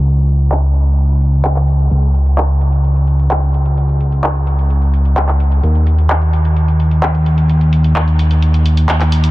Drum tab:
HH |xxxxxxxxxxxxxxxx|xxxxxxxxxxxxxxxx|xxxxxxxxxxxxxxxx|xxxxxxxxxxxxxxxx|
CP |----x-------xx--|----x-------x---|----x-------xx--|----x-------x---|

HH |xxxxxxxxxxxxxxxx|
CP |----x-------xx--|